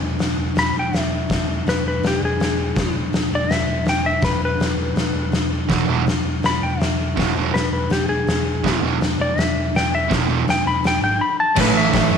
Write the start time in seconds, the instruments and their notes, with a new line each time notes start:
0.01 picked electric bass E1
0.19 picked electric bass E1, snare, open hi-hat
0.37 picked electric bass E1
0.55 picked electric bass E1, electric slide guitar B5, snare, open hi-hat
0.73 picked electric bass E1
0.79 electric slide guitar G5
0.92 picked electric bass E1, snare, open hi-hat
0.97 electric slide guitar E5
1.30 picked electric bass E1, kick, snare, open hi-hat
1.47 picked electric bass E1
1.65 picked electric bass E1, snare, open hi-hat
1.69 electric slide guitar B4
1.83 picked electric bass E1
1.88 electric slide guitar B4
2.02 picked electric bass E1, snare, open hi-hat
2.07 electric slide guitar G4
2.21 picked electric bass E1
2.25 electric slide guitar G#4
2.39 picked electric bass E1, snare, open hi-hat
2.76 picked electric bass E1, kick, snare, open hi-hat
2.94 picked electric bass E1
3.12 picked electric bass E1, snare, open hi-hat
3.31 picked electric bass E1
3.35 electric slide guitar D5
3.49 picked electric bass E1, electric slide guitar E5, snare, open hi-hat
3.67 picked electric bass E1
3.84 picked electric bass E1, snare, open hi-hat
3.89 electric slide guitar G5
4.06 electric slide guitar E5
4.22 picked electric bass E1, electric slide guitar B4, kick, snare, open hi-hat
4.39 picked electric bass E1
4.45 electric slide guitar B4
4.58 picked electric bass E1, snare, open hi-hat
4.75 picked electric bass E1
4.94 picked electric bass E1, snare, open hi-hat
5.14 picked electric bass E1
5.32 picked electric bass E1, snare, open hi-hat
5.69 picked electric bass E1, distorted electric guitar E2 B2 E3, kick, snare, open hi-hat
5.87 picked electric bass E1, distorted electric guitar E2 B2 E3
6.04 picked electric bass E1, snare, open hi-hat
6.23 picked electric bass E1
6.43 picked electric bass E1, electric slide guitar B5, snare, open hi-hat
6.61 picked electric bass E1, electric slide guitar G5
6.80 picked electric bass E1, electric slide guitar E5, snare, open hi-hat
7.16 picked electric bass E1, distorted electric guitar E2 B2 E3, kick, snare, open hi-hat
7.35 picked electric bass E1, distorted electric guitar E2 B2 E3
7.53 picked electric bass E1, electric slide guitar B4, snare, open hi-hat
7.70 picked electric bass E1, electric slide guitar B4
7.89 picked electric bass E1, electric slide guitar G4, snare, open hi-hat
8.08 picked electric bass E1, electric slide guitar G#4
8.27 picked electric bass E1, snare, open hi-hat
8.64 picked electric bass E1, distorted electric guitar E2 B2 E3, kick, snare, open hi-hat
8.80 picked electric bass E1, distorted electric guitar E2 B2 E3
8.99 picked electric bass E1, snare, open hi-hat
9.18 picked electric bass E1, electric slide guitar D5
9.36 picked electric bass E1, snare, open hi-hat
9.40 electric slide guitar E5
9.54 picked electric bass E1
9.73 picked electric bass E1, electric slide guitar G5, snare, open hi-hat
9.95 electric slide guitar E5
10.09 picked electric bass E1, distorted electric guitar E2 B2 E3, kick, snare, open hi-hat
10.28 picked electric bass E1, distorted electric guitar E2 B2 E3
10.46 picked electric bass E1, snare, open hi-hat
10.50 electric slide guitar G5
10.65 picked electric bass E1, electric slide guitar B5
10.83 picked electric bass E1, snare, open hi-hat
10.87 electric slide guitar G5
11.01 picked electric bass G#1, electric slide guitar G5
11.21 electric slide guitar B5
11.40 electric slide guitar A5
11.54 picked electric bass A1, distorted electric guitar A2, transistor combo organ A4 C#5 E5, kick, snare, crash
11.59 distorted electric guitar E3 A3, electric slide guitar B4
11.73 picked electric bass A1
11.77 electric slide guitar E5
11.93 picked electric bass A1, kick, snare, open hi-hat
12.10 picked electric bass F#2